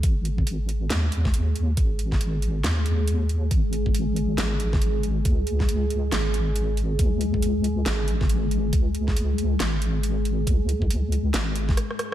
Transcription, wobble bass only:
X:1
M:4/4
L:1/8
Q:"Swing 16ths" 1/4=138
K:C#dor
V:1 name="Wobble bass" clef=bass
G,,,4 D,,4 | G,,,4 D,,4 | G,,,4 G,,,4 | C,,4 G,,,4 |
C,,4 G,,,4 | C,,4 G,,,4 | C,,4 G,,,2 z2 |]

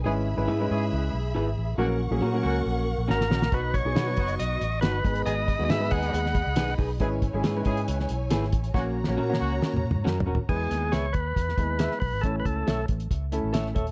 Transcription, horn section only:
X:1
M:4/4
L:1/16
Q:1/4=138
K:E
V:1 name="Horn section"
[CEG] z4 z [CEG]2 z8 | [^A,CF] z4 z [A,CF]2 z8 | [B,DF] z4 z [B,DF]2 z8 | [B,DG] z4 z [B,DG]3 z6 z |
[CEG] z4 z [CEG]2 z8 | [^A,CF] z4 z [A,CF]2 z8 | z16 | z16 |]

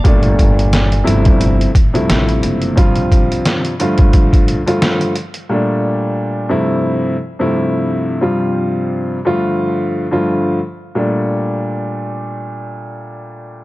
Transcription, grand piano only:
X:1
M:4/4
L:1/16
Q:"Swing 16ths" 1/4=88
K:Gdor
V:1 name="Grand piano" clef=bass
[B,,G,A,D]6 [G,,C,F,A,E]4 z [G,,C,F,A,E]4- [G,,C,F,A,E] | [G,,C,F,G,F]6 [G,,D,F,A,F]4- [G,,D,F,A,F] [G,,D,F,A,F]3 z2 | [B,,G,A,D]6 [G,,C,F,A,E]4 z [G,,C,F,A,E]4- [G,,C,F,A,E] | [G,,C,F,G,F]6 [G,,D,F,A,F]4- [G,,D,F,A,F] [G,,D,F,A,F]3 z2 |
[B,,G,A,D]16 |]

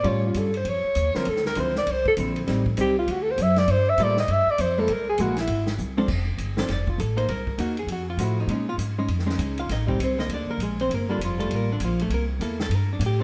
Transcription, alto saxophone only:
X:1
M:4/4
L:1/8
Q:"Swing" 1/4=199
K:F
V:1 name="Alto saxophone"
^c ^E A ^B c3 _B | A B c d c A z2 | z2 G F (3^F A c e d | c e d _e =e d c A |
B ^G _G E2 z3 | z8 | z8 | z8 |
z8 | z8 | z8 |]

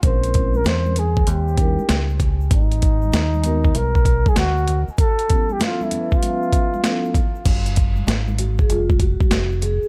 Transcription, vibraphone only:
X:1
M:4/4
L:1/16
Q:"Swing 16ths" 1/4=97
K:C#mix
V:1 name="Vibraphone"
[G,^B,C=EA]6 z4 [=G,CDEA]2 z4 | z6 [G,B,DFA]2 z8 | z2 [E,B,C=E=G=A]4 [^E,B,CAB=e]6 [^E,B,C=EA]2 z2 | z6 F G E2 F4 G2 |]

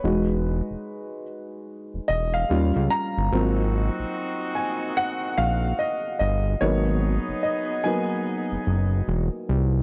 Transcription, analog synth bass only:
X:1
M:4/4
L:1/16
Q:"Swing 16ths" 1/4=73
K:G#m
V:1 name="Analog synth bass" clef=bass
E,,,3 E,,, z4 z E,,, E,,,2 D,, C,, z =G,,, | G,,,3 A,,, z6 A,,,2 z2 =G,,,2 | G,,,3 F,,, z4 z F,,, F,,,2 E,,, z ^B,,,2 |]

